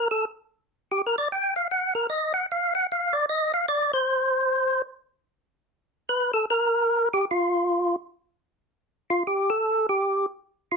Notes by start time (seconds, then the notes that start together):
0.11 A4
0.91 G4
1.06 A#4
1.18 D5
1.32 G5
1.56 F5
1.71 F#5
1.95 A#4
2.10 D#5
2.34 F#5
2.52 F5
2.75 F#5
2.92 F5
3.13 D5
3.29 D#5
3.54 F5
3.68 D5
3.93 C5
6.09 B4
6.34 A4
6.50 A#4
7.14 G4
7.31 F4
9.10 F4
9.27 G4
9.50 A4
9.89 G4
10.72 F4